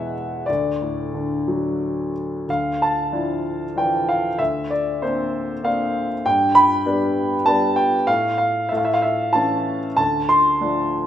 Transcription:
0.00 0.45 E2 soft
0.00 0.13 B2 soft
0.00 0.45 E3 soft
0.00 0.46 G#3 soft
0.00 0.50 E5 medium
0.00 0.50 F#5 medium
0.00 0.50 G#5 medium
0.46 2.45 D2 soft
0.46 2.11 D5 medium
0.82 2.12 A2 soft
1.14 2.45 D3 soft
1.48 2.46 F#3 soft
2.48 4.36 D2 soft
2.48 2.82 F5 medium
2.82 3.74 A5 medium
3.12 3.64 F3 soft
3.12 3.64 D4 soft
3.12 3.64 E4 soft
3.76 4.27 E3 soft
3.76 4.26 F3 soft
3.76 4.27 D4 soft
3.76 4.07 G5 medium
4.09 4.41 F5 medium
4.39 6.21 D2 soft
4.39 4.71 E5 medium
4.70 5.03 D5 medium
5.02 5.52 A#3 soft
5.02 5.52 C4 soft
5.02 5.52 D4 soft
5.02 5.66 C5 medium
5.63 6.12 A#3 soft
5.63 6.13 C4 soft
5.63 6.13 D4 soft
5.63 6.07 F5 medium
6.25 8.04 G2 medium
6.25 6.57 G5 medium
6.55 7.49 B5 medium
6.86 7.34 G3 soft
6.86 7.35 B3 soft
6.86 7.35 D4 soft
7.46 7.95 G3 soft
7.46 7.96 B3 soft
7.46 7.96 D4 soft
7.46 7.74 A5 medium
7.76 8.08 G5 medium
8.07 8.69 A2 medium
8.07 8.36 F5 medium
8.38 8.71 F5 medium
8.69 9.95 A2 medium
8.69 8.78 E5 medium
8.77 8.86 F5 medium
8.85 8.94 E5 medium
8.94 9.02 F5 medium
9.02 9.32 E5 medium
9.33 9.86 E3 soft
9.33 9.86 A3 soft
9.33 9.86 C#4 soft
9.33 9.78 A5 medium
9.97 11.07 D2 soft
9.97 10.30 A5 medium
10.29 11.07 C6 medium
10.61 11.07 F3 soft
10.61 11.07 A3 soft
10.61 11.07 D4 soft

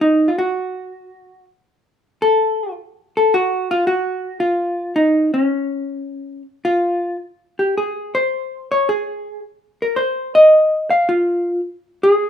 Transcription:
0.01 0.29 D#4 medium
0.28 0.37 F4 medium
0.38 1.44 F#4 medium
2.22 2.73 A4 loud
3.17 3.33 A4 medium
3.34 3.71 F#4 loud
3.71 3.87 F4 medium
3.87 4.38 F#4 medium
4.40 4.93 F4 medium
4.96 5.33 D#4 medium
5.34 6.42 C#4 medium
6.65 7.16 F4 loud
7.59 7.76 G4 medium
7.78 8.16 G#4 medium
8.15 8.71 C5 medium
8.72 8.88 C#5 medium
8.89 9.39 G#4 medium
9.82 9.99 A#4 medium
9.96 10.35 C5 loud
10.35 10.87 D#5 medium
10.90 11.08 F5 medium
11.09 11.60 F4 medium
12.03 12.30 G#4 medium

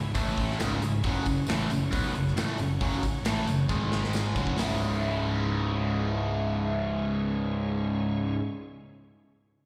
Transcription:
0.00 0.13 C#1 medium
0.00 0.10 C#2 medium
0.00 0.11 G#2 medium
0.00 0.12 C#4 medium
0.00 0.11 E4 medium
0.00 0.12 G#4 medium
0.00 0.12 E5 medium
0.14 0.56 A1 medium
0.14 0.58 A2 medium
0.14 0.59 E3 loud
0.14 0.59 A3 loud
0.14 0.57 E4 medium
0.14 0.58 A4 medium
0.14 0.57 E5 medium
0.14 kick loud
0.14 open hi-hat medium
0.14 tambourine medium
0.38 kick medium
0.38 open hi-hat medium
0.50 snare soft
0.57 0.80 C#1 loud
0.57 0.81 C#2 medium
0.57 0.81 G#2 medium
0.57 0.81 C#3 loud
0.57 1.02 C#4 medium
0.57 1.02 E4 medium
0.57 1.02 G#4 medium
0.57 1.03 E5 medium
0.57 snare loud
0.57 open hi-hat medium
0.57 tambourine loud
0.81 1.02 C#1 medium
0.81 0.99 C#2 medium
0.81 1.00 G#2 medium
0.81 open hi-hat medium
0.81 tambourine medium
1.02 1.24 F#1 loud
1.02 1.25 F#2 loud
1.02 1.25 C#3 loud
1.02 1.26 F#3 loud
1.02 3.66 C#4 medium
1.02 3.67 F#4 medium
1.02 3.66 C#5 medium
1.02 kick loud
1.02 open hi-hat medium
1.26 1.46 F#1 medium
1.26 1.44 F#2 medium
1.26 1.44 C#3 medium
1.26 kick medium
1.26 open hi-hat medium
1.26 tambourine medium
1.46 1.68 A1 loud
1.46 1.69 A2 medium
1.46 1.69 E3 loud
1.46 1.70 A3 loud
1.46 snare loud
1.46 open hi-hat medium
1.46 tambourine medium
1.69 1.90 F#1 medium
1.69 1.87 F#2 medium
1.69 1.87 C#3 medium
1.69 open hi-hat medium
1.69 tambourine medium
1.91 2.13 B1 medium
1.91 2.13 B2 medium
1.91 2.13 F#3 loud
1.91 2.13 B3 loud
1.91 kick loud
1.91 open hi-hat loud
1.91 tambourine medium
2.13 2.34 F#1 medium
2.13 2.32 F#2 medium
2.13 2.32 C#3 medium
2.13 open hi-hat medium
2.28 snare soft
2.36 2.57 A1 loud
2.36 2.58 A2 medium
2.36 2.59 E3 medium
2.36 2.58 A3 medium
2.36 snare loud
2.36 open hi-hat medium
2.36 tambourine medium
2.58 2.79 F#1 medium
2.58 2.77 F#2 medium
2.58 2.77 C#3 medium
2.58 open hi-hat medium
2.58 tambourine medium
2.81 3.01 F#1 loud
2.81 3.02 F#2 loud
2.81 3.02 C#3 loud
2.81 3.03 F#3 loud
2.81 kick loud
2.81 open hi-hat medium
3.03 muted picked electric bass stroke soft
3.03 muted distorted electric guitar stroke medium
3.03 muted overdriven electric guitar stroke medium
3.03 kick medium
3.03 open hi-hat medium
3.03 tambourine medium
3.23 3.45 A1 medium
3.23 3.47 A2 medium
3.23 3.47 E3 loud
3.23 snare loud
3.23 open hi-hat medium
3.23 tambourine loud
3.28 3.48 A3 loud
3.46 3.67 F#1 medium
3.46 3.65 F#2 medium
3.46 3.65 C#3 medium
3.46 open hi-hat medium
3.46 tambourine medium
3.69 4.32 G#1 medium
3.69 4.35 G#2 medium
3.69 4.36 D#3 medium
3.69 4.36 G#3 medium
3.69 4.36 D#4 medium
3.69 4.35 G#4 medium
3.69 4.36 D#5 medium
3.69 kick loud
3.69 tambourine medium
3.92 snare medium
3.92 tambourine soft
4.04 snare medium
4.13 snare medium
4.13 tambourine medium
4.35 4.56 F#1 medium
4.35 4.56 F#2 medium
4.35 4.58 C#3 medium
4.35 4.58 F#3 loud
4.35 kick loud
4.35 tambourine medium
4.47 kick medium
4.57 8.35 C#1 loud
4.57 8.38 C#2 medium
4.57 8.40 G#2 loud
4.57 8.41 C#3 loud
4.57 8.37 G#3 medium
4.57 8.42 G#3 loud
4.57 8.37 C#4 medium
4.57 8.37 E4 medium
4.57 8.37 C#5 medium
4.57 snare loud
4.57 open hi-hat medium
4.57 tambourine medium
4.61 8.43 E4 loud

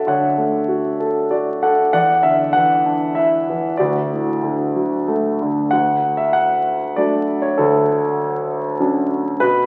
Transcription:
0.00 0.07 D3 soft
0.00 0.38 A3 soft
0.00 0.68 F#4 soft
0.00 1.00 A4 soft
0.00 0.09 C#5 soft
0.00 1.31 D5 medium
0.00 1.94 E5 medium
0.00 0.08 F#5 medium
0.07 1.87 D3 medium
0.07 0.96 C#5 soft
0.07 0.96 F#5 medium
0.38 1.57 A3 soft
0.68 1.29 F#4 soft
1.00 1.61 A4 soft
1.31 1.90 F#4 soft
1.31 1.59 D5 medium
1.63 1.92 A4 soft
1.63 1.90 F#5 medium
1.93 3.76 E2 medium
1.93 2.81 D5 medium
1.93 2.24 F#5 medium
2.23 3.44 D3 soft
2.23 2.54 E5 medium
2.53 3.48 E3 soft
2.53 3.17 F#5 medium
2.86 3.77 D4 soft
3.15 3.78 E4 soft
3.15 3.74 E5 medium
3.50 3.79 E3 soft
3.77 5.69 D2 medium
3.77 5.04 F#4 soft
3.77 5.03 D5 medium
4.12 5.38 A2 soft
4.43 5.40 D3 soft
4.76 5.70 F#3 soft
5.08 5.71 A3 soft
5.42 5.72 D3 soft
5.71 7.55 D2 soft
5.71 6.15 F#5 medium
6.17 6.34 E5 medium
6.33 6.98 F#5 medium
6.96 7.57 F#3 soft
6.96 7.57 A3 soft
6.96 7.57 D4 soft
6.96 7.44 D5 medium
7.42 7.58 C#5 medium
7.58 9.38 D2 medium
7.58 8.45 A4 medium
8.80 9.40 F#3 soft
8.80 9.40 C#4 soft
8.80 9.40 D4 soft
9.40 9.66 B2 medium
9.40 9.66 B4 medium

